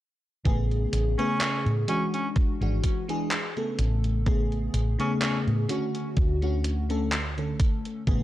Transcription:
0.45 A1 C#3 A3 B3 G#4, kick, closed hi-hat
0.71 closed hi-hat
0.93 A1, closed hi-hat
1.18 C#3 A3 B3 C#4 G#4, closed hi-hat
1.41 clap, closed hi-hat
1.66 A2, closed hi-hat
1.87 E3 G#3 C#4 D4 F#4, closed hi-hat
2.14 C#4, closed hi-hat
2.36 muted fretless electric bass stroke, kick, closed hi-hat
2.61 G#1 E3 G#3 D4 F#4, closed hi-hat
2.83 kick, closed hi-hat
3.08 E3 G#3 D4 G#4, closed hi-hat
3.31 clap, closed hi-hat
3.56 C#3 A3 B3 A4, closed hi-hat
3.79 A1, closed hi-hat
4.04 closed hi-hat
4.26 C#3 A3 B3 G#4, kick, closed hi-hat
4.52 closed hi-hat
4.74 A1, closed hi-hat
4.99 C#3 A3 B3 C#4 G#4, closed hi-hat
5.22 C#4, clap, closed hi-hat
5.47 A2, closed hi-hat
5.68 D3 A3 C#4 F#4, closed hi-hat
5.95 closed hi-hat
6.17 D2, kick, closed hi-hat
6.42 D3 A3 C#4 F#4, closed hi-hat
6.64 closed hi-hat
6.89 D3 A3 C#4 A4, closed hi-hat
7.12 clap, closed hi-hat
7.37 D3 A3 C#4 A4, closed hi-hat
7.60 A1, kick, closed hi-hat
7.85 closed hi-hat
8.07 A1 C#3 A3 B3 G#4, kick, closed hi-hat

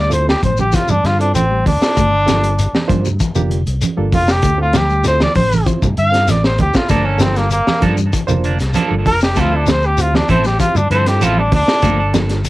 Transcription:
Already playing: D2 G3
0.00 D5
0.09 C4 E4 F4 A4, closed hi-hat, shekere
0.13 C5
0.29 G4, snare
0.43 A1 F3 C5, kick, closed hi-hat, high conga, shekere
0.57 G3 G4, high conga, low conga, shekere
0.72 E3 C4 E4 F4 G4, kick, snare, closed hi-hat, shekere
0.88 G2 D4, high conga, low conga, shekere
1.04 G2 D3 F4, snare, closed hi-hat
1.19 C4 D4 E4 F4 A4, closed hi-hat, shekere
1.35 A1 C4, closed hi-hat, high conga, shekere
1.51 G3
1.66 D2 D4, kick, open hi-hat, high conga, shekere
1.81 C4 E4 F4 A4, snare, shekere
1.97 G1 A3, kick, closed hi-hat, low conga, shekere
2.26 F3 A#3 D4 F4 A4, snare, closed hi-hat, high conga, shekere
2.43 G3, closed hi-hat, shekere
2.59 closed hi-hat, shekere
2.73 muted fingered electric bass stroke, snare, high conga
2.88 G2 F3 A#3 D4 F4 C5, kick, closed hi-hat, high conga, shekere
3.04 G3, low conga, shekere
3.20 E3, kick, closed hi-hat, shekere
3.35 F1 D3 A#3 D4 F4 G4, high conga, low conga, shekere
3.50 D3, closed hi-hat
3.67 C2, closed hi-hat, shekere
3.81 closed hi-hat, high conga, shekere
3.97 G1 G3 A#3 D4 F4 A4
4.12 F1 F4, kick, open hi-hat, high conga, shekere
4.28 G4, snare, shekere
4.42 D2 A3, kick, closed hi-hat, low conga, shekere
4.58 C4 E4 F4 A4
4.73 F3 G4, snare, closed hi-hat, high conga, shekere
4.89 G3, shekere
5.04 C4 E4 F4 A4 C5, snare, closed hi-hat, shekere
5.20 D5, snare, high conga
5.35 A1 F3 C5, kick, open hi-hat, high conga, shekere
5.51 muted clean electric guitar stroke, high conga, low conga, shekere
5.66 E3 C4 E4 F4 C5, kick, closed hi-hat, shekere
5.82 G2 C3, kick, low conga, shekere
5.97 G2 D3 F5, closed hi-hat
6.11 C4 E4 F4 A4, snare, closed hi-hat, shekere
6.28 A1 D5, snare, closed hi-hat, high conga, shekere
6.44 C5, snare
6.58 D2 G4, kick, closed hi-hat, high conga, shekere
6.73 C4 E4 F4 A4, kick, snare, shekere
6.89 G1 F3 A3 A#3 D4 A4, kick, snare, closed hi-hat, low conga, shekere
7.05 A#3 C#4 D4 A4
7.18 F3 A#3 C4 D4 F4 A4, muted clean electric guitar stroke, snare, closed hi-hat, high conga, shekere
7.36 G3 A#3, snare, closed hi-hat, shekere
7.51 A#3, muted clean electric guitar stroke, closed hi-hat, shekere
7.67 muted clean electric guitar stroke, muted fingered electric bass stroke, snare, high conga
7.80 G2 F3 A#3 D4 F4 A4, kick, closed hi-hat, high conga, shekere
7.97 G3, muted clean electric guitar stroke, high conga, shekere
8.13 E3, muted clean electric guitar stroke, kick, closed hi-hat, shekere
8.27 F1 D3 A#3 D4 F4 C5, muted clean electric guitar stroke, high conga, low conga, shekere
8.44 D3 A#3 D4, closed hi-hat
8.59 C2, snare, closed hi-hat, shekere
8.73 F3 A#3 D4 A4, closed hi-hat, high conga, shekere
8.88 G1 G3 A#3 D4 F4 A4
9.06 F1 A#4, kick, open hi-hat, high conga, shekere
9.20 G4, muted clean electric guitar stroke, snare, shekere
9.36 D2 F3 A3 C4 E4 A4, kick, snare, closed hi-hat, low conga, shekere
9.40 F4
9.51 C4 E4 F4 A4, muted clean electric guitar stroke
9.56 D4
9.66 F3, muted clean electric guitar stroke, snare, closed hi-hat, high conga, shekere
9.71 C5
9.82 G4, muted clean electric guitar stroke, shekere
9.97 C4 E4 F4 G4, muted clean electric guitar stroke, closed hi-hat, shekere
10.14 D4, muted clean electric guitar stroke, snare, high conga
10.28 A1 F3 C4 E4 A4 C5, kick, closed hi-hat, high conga, shekere
10.44 G3 G4, muted clean electric guitar stroke, snare, shekere
10.59 E3 C4 E4 F4 G4, muted clean electric guitar stroke, kick, closed hi-hat, shekere
10.75 G2 D3 D4, muted clean electric guitar stroke, low conga, shekere
10.90 G2 D3 F3 C4 E4 A4 C5, closed hi-hat
11.06 C4 E4 F4 G4 A4, muted clean electric guitar stroke, snare, closed hi-hat, shekere
11.21 A1 F3 C4 E4 F4 A4, closed hi-hat, high conga, shekere
11.37 G3 D4
11.52 D2 D4, kick, open hi-hat, high conga, shekere
11.68 C4 E4 F4 A4, muted clean electric guitar stroke, muted fingered electric bass stroke, snare, shekere
11.82 G1 F3 A3 A#3 D4 A4, kick, closed hi-hat, low conga, shekere
11.99 D4 A4, muted clean electric guitar stroke
12.14 F3 A#3 D4 F4 A4, muted clean electric guitar stroke, snare, closed hi-hat, high conga, shekere
12.29 G3, snare, closed hi-hat, shekere
12.45 muted clean electric guitar stroke, closed hi-hat, shekere

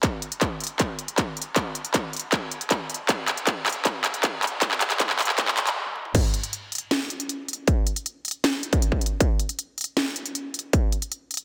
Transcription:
0.03 kick, clap, closed hi-hat
0.22 closed hi-hat
0.32 closed hi-hat
0.41 kick, clap, closed hi-hat
0.60 closed hi-hat
0.64 closed hi-hat
0.67 closed hi-hat
0.79 kick, clap, closed hi-hat
0.99 closed hi-hat
1.08 closed hi-hat
1.18 kick, clap, closed hi-hat
1.37 closed hi-hat
1.42 closed hi-hat
1.56 kick, clap, closed hi-hat
1.75 closed hi-hat
1.85 closed hi-hat
1.94 kick, clap, closed hi-hat
2.13 closed hi-hat
2.17 closed hi-hat
2.19 closed hi-hat
2.32 kick, clap, closed hi-hat
2.51 closed hi-hat
2.61 closed hi-hat
2.70 kick, clap, closed hi-hat
2.90 closed hi-hat
2.94 closed hi-hat
3.09 kick, clap, closed hi-hat
3.28 clap, closed hi-hat
3.37 closed hi-hat
3.47 kick, clap, closed hi-hat
3.66 clap, closed hi-hat
3.69 closed hi-hat
3.72 closed hi-hat
3.85 kick, clap, closed hi-hat
4.04 clap, closed hi-hat
4.14 closed hi-hat
4.23 kick, clap, closed hi-hat
4.43 clap, closed hi-hat
4.47 closed hi-hat
4.62 kick, clap, closed hi-hat
4.71 clap
4.81 clap, closed hi-hat
4.90 clap, closed hi-hat
5.00 kick, clap, closed hi-hat
5.09 clap
5.19 clap, closed hi-hat
5.22 closed hi-hat
5.25 clap, closed hi-hat
5.38 kick, clap, closed hi-hat
5.48 clap
5.57 clap, closed hi-hat
5.67 clap, closed hi-hat
5.86 high tom
5.96 mid tom
6.05 mid tom
6.15 kick, closed hi-hat, crash
6.34 closed hi-hat
6.43 closed hi-hat
6.53 closed hi-hat
6.72 closed hi-hat
6.75 closed hi-hat
6.78 closed hi-hat
6.91 snare, closed hi-hat
7.10 closed hi-hat
7.20 closed hi-hat
7.29 closed hi-hat
7.48 closed hi-hat
7.53 closed hi-hat
7.67 kick, closed hi-hat
7.87 closed hi-hat
7.96 closed hi-hat
8.06 closed hi-hat
8.25 closed hi-hat
8.28 closed hi-hat
8.31 closed hi-hat
8.44 snare, closed hi-hat
8.63 closed hi-hat
8.73 kick, closed hi-hat
8.82 closed hi-hat
8.92 kick
9.01 closed hi-hat
9.06 closed hi-hat
9.20 kick, closed hi-hat
9.39 closed hi-hat
9.49 closed hi-hat
9.59 closed hi-hat
9.78 closed hi-hat
9.81 closed hi-hat
9.84 closed hi-hat
9.97 snare, closed hi-hat
10.16 closed hi-hat
10.26 closed hi-hat
10.35 closed hi-hat
10.54 closed hi-hat
10.59 closed hi-hat
10.73 kick, closed hi-hat
10.92 closed hi-hat
11.02 closed hi-hat
11.12 closed hi-hat
11.31 closed hi-hat
11.34 closed hi-hat
11.37 closed hi-hat

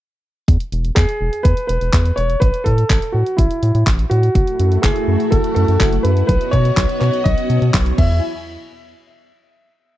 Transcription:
0.48 E2, kick, closed hi-hat
0.60 closed hi-hat
0.72 E1, closed hi-hat
0.85 closed hi-hat
0.95 E2 G#4, kick, clap, closed hi-hat
1.09 closed hi-hat
1.21 E1
1.33 closed hi-hat
1.43 E2 B4, kick, closed hi-hat
1.57 closed hi-hat
1.67 E1 B4, closed hi-hat
1.81 E1, closed hi-hat
1.93 E2, kick, clap, closed hi-hat
2.05 closed hi-hat
2.16 E1 C#5, closed hi-hat
2.30 closed hi-hat
2.40 A1 B4, kick, closed hi-hat
2.54 closed hi-hat
2.64 A2 A4, kick, closed hi-hat
2.78 closed hi-hat
2.90 A1, kick, clap, closed hi-hat
3.02 closed hi-hat
3.12 A2 F#4
3.26 closed hi-hat
3.37 A1 E4, kick, closed hi-hat
3.51 closed hi-hat
3.63 A2, closed hi-hat
3.75 A2, closed hi-hat
3.87 A1, kick, clap, closed hi-hat
3.99 closed hi-hat
4.10 A2 F#4, closed hi-hat
4.23 closed hi-hat
4.35 F#1 A3 E4 F#4, kick, closed hi-hat
4.47 closed hi-hat
4.60 F#2, closed hi-hat
4.72 closed hi-hat
4.82 F#1 G#4, kick, clap, closed hi-hat
4.96 closed hi-hat
5.08 F#2
5.20 closed hi-hat
5.31 F#1 A4, kick, closed hi-hat
5.44 closed hi-hat
5.55 F#2 A4, closed hi-hat
5.68 F#2, closed hi-hat
5.80 F#1, kick, clap, closed hi-hat
5.93 closed hi-hat
6.03 F#2 B4, closed hi-hat
6.17 closed hi-hat
6.27 B1 B3 F#4 B4 C#5 D#5, kick, closed hi-hat
6.41 closed hi-hat
6.51 B2 C#5, kick, closed hi-hat
6.65 closed hi-hat
6.77 B1, kick, clap, closed hi-hat
6.89 closed hi-hat
7.00 B2 C#5, clap, closed hi-hat
7.13 closed hi-hat
7.24 B1 D#5, kick, closed hi-hat
7.38 closed hi-hat
7.50 B2, closed hi-hat
7.62 B2, closed hi-hat
7.74 B1, kick, clap, closed hi-hat
7.86 closed hi-hat
7.98 E2 E4 E5 G#5 B5, kick, crash

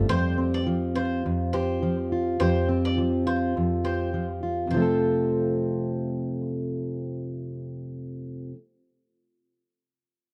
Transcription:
Already playing: G3 A3 C4
0.09 F2 G4 C5
0.38 C4
0.54 D5
0.67 F3
0.96 F4 C5
1.26 F2
1.53 G4 C5
1.83 F3
2.12 F4
2.40 F2 G4 C5
2.69 C4
2.85 D5
2.98 F3
3.27 F4 C5
3.57 F2
3.85 G4 C5
4.14 F3
4.43 F4
4.67 F2 C3 C5
4.74 F3 A3
4.80 C4 A4

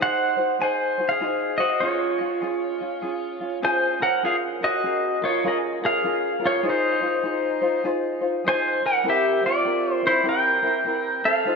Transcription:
0.00 D#4 F#4 G#4 C5 F#5
0.37 D#4 F#4 C5
0.59 D#4 F#4 G#4 C5 G#5
0.98 D#4 F#4 C5
1.09 G#4 F5
1.20 D#4 F#4 G#4 C5
1.58 D#4 F#4 C5 D#5
1.80 C#4 F4 G#4 C#5
2.21 C#4 F4
2.42 C#4 F4 G#4
2.81 C#4 F4
3.02 C#4 F4 G#4
3.41 C#4 F4
3.62 C#4 F4 G#4 C5 G#5
4.00 C#4 A#4 C5 F#5
4.23 C#4 F4 G#4 A#4 F5
4.61 C#4 F#4 A#4 D#5
4.84 C#4 G#4 A#4
5.22 C#4 F4 A#4 C#5
5.44 C#4 F4 G#4 A#4 D#5
5.82 C#4 F4 G#4 A#4
5.86 F5
6.03 C#4 F4 G#4 A#4
6.40 C#4 F4 A#4
6.46 F4 C#5
6.63 D#4 F4 G#4 C5
6.69 D#4 C5
7.01 D#4 F4 C5
7.23 D#4 F4 G#4 C5
7.62 D#4 F4 C5
7.84 D#4 F4 G#4 C5
8.21 D#4 F4 C5
8.44 D#4 F4 G#4 C5
8.49 G#5
8.82 D#4 A#4 C5
8.86 F#5
9.04 C4 E4 G4 A#4
9.09 G4 E5
9.42 C4 A#4
9.46 F4 D5
9.64 C4 G4 A#4
9.93 C5
10.03 C4 E4 A#4 C5
10.07 E4
10.24 C4 E4 G4 A#4
10.29 A#4 G5
10.63 C4 E4 A#4
10.85 C4 E4 G4 A#4
11.25 C4 A4 F5
11.46 D#4 F4 A4 C5

